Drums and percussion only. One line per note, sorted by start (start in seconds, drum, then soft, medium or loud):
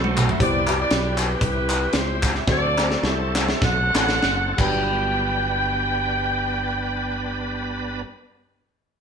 0.04 high tom medium
0.17 clap loud
0.17 mid tom loud
0.29 floor tom loud
0.40 kick loud
0.40 closed hi-hat loud
0.67 clap loud
0.67 closed hi-hat medium
0.91 snare loud
0.91 closed hi-hat medium
1.18 clap loud
1.18 closed hi-hat medium
1.41 kick loud
1.41 closed hi-hat medium
1.69 clap loud
1.69 closed hi-hat medium
1.93 snare loud
1.93 closed hi-hat medium
2.23 kick loud
2.23 clap loud
2.23 closed hi-hat medium
2.35 snare soft
2.47 kick loud
2.47 snare medium
2.78 snare medium
2.78 clap medium
2.91 snare medium
3.04 snare medium
3.35 snare medium
3.35 clap loud
3.49 snare medium
3.62 kick loud
3.62 snare medium
3.95 snare loud
3.95 clap loud
4.09 snare medium
4.22 snare medium
4.58 kick loud
4.58 clap medium
4.58 crash medium